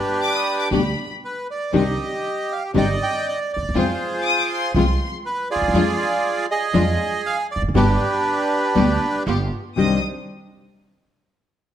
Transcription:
Already playing: D4 G4 B4
0.21 D6
0.33 D#6
0.58 D6
0.71 D2 B2 D3 G3 B3 D4 G4 B5
1.25 B4
1.51 D5
1.73 C2 C3 D#3 G3 C4 D4 D#4 G4 D#5
2.52 F5
2.74 G1 C3 D#3 G3 C4 D4 D#4 G4 D5 D#5
2.78 G5
3.03 G5
3.28 D#5
3.53 D2 D5
3.62 D#2
3.69 E2
3.75 F2 C3 F3 G#3 C4 F4 G#4 C5
4.22 D6 D#6
4.37 D6
4.50 C6
4.74 C2 C3 F3 G#3 C4 F4 C6
5.26 B4
5.51 F4 G#4 D5
5.56 D2
5.62 D#2
5.68 E2
5.74 F2 F3 G#3 D4 F4
6.51 G#4 D#5
6.73 F2 F3 G#3 D4 F4
7.26 F5
7.52 D5
7.56 E1
7.62 F1
7.69 F#1
7.74 G1 B2 D3 G3 B3 D4 G4 B4
8.75 D2 B2 D3 G3 B3 D4 G4
9.26 G1 B3 F4 G4
9.76 C2 C3 D#3 G3 D4 D#4 G4 C5 D#5 D#6

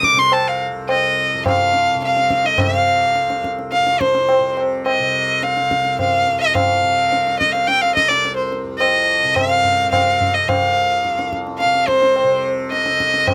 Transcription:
Already playing: C2 F2 C3
0.03 D6, tabla ke
0.13 C3
0.17 C6, tabla te
0.32 A5, tabla na
0.48 F5
0.72 C2
0.89 D#5, tabla na
1.34 F2
1.46 F5, tabla na, tabla ge
1.74 tabla te
1.95 C3
2.02 F5, tabla te
2.16 tabla te
2.30 tabla ke
2.45 D#5, tabla te
2.57 C3 F5, tabla na, tabla ge
3.16 C2, tabla te
3.30 tabla te
3.44 tabla ke
3.59 tabla te
3.72 F5, tabla te
3.79 F2
3.87 tabla te
4.00 C5, tabla ke
4.15 tabla te
4.29 tabla na
4.39 C3
4.57 tabla na
4.86 D#5, tabla na
5.00 C3
5.43 F5, tabla te
5.57 C2, tabla te
5.71 tabla ke
5.85 tabla te
5.99 F5, tabla na, tabla ge
6.21 F2
6.27 tabla te
6.41 D#5
6.54 F5, tabla na, tabla ge
6.82 C3
7.12 tabla te
7.27 tabla te
7.40 C3 D#5, tabla ke
7.52 F5, tabla te
7.67 G5, tabla te
7.81 F5, tabla te
7.95 D#5, tabla ke
8.04 C2
8.08 D5, tabla te
8.25 tabla te
8.36 C5
8.52 tabla te
8.64 F2
8.78 D#5, tabla na
9.24 C3
9.35 F5, tabla na, tabla ge
9.64 tabla ge
9.84 C3
9.91 F5, tabla na, tabla ge
10.21 tabla ge
10.34 D#5
10.44 C2 F5
10.49 tabla na, tabla ge
11.04 F2, tabla te
11.19 tabla te
11.33 tabla ke
11.47 tabla te
11.59 F5, tabla te
11.64 C3
11.74 tabla te
11.87 C5, tabla ke
12.02 tabla te
12.16 tabla na
12.23 C3
12.71 D#5, tabla te
12.83 C2, tabla te
13.00 tabla ke
13.14 tabla te
13.27 F5, tabla na, tabla ge

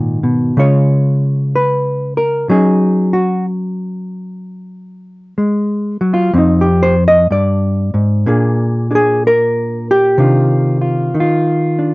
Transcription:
Already playing: G#2 A#2 D#3 D#4 F#4
0.23 B2
0.57 C#3 G#3 C#4 F4 C#5
1.56 B4
2.17 A#4
2.49 F#3 C#4 D#4 G#4
3.13 F#4
5.38 G#3
6.01 F#3
6.14 F4
6.33 F2 C4
6.38 D#4
6.61 G4
6.83 C5
7.08 D#5
7.31 G2 D5
7.94 G#2
8.26 A#2 A#3 D4 G#4
8.91 D4 G#4
8.95 G#4
9.27 A#4
9.91 G4
10.18 C3 D#3 D4 F4
10.81 F4
11.14 D#3
11.20 F4
11.79 D4

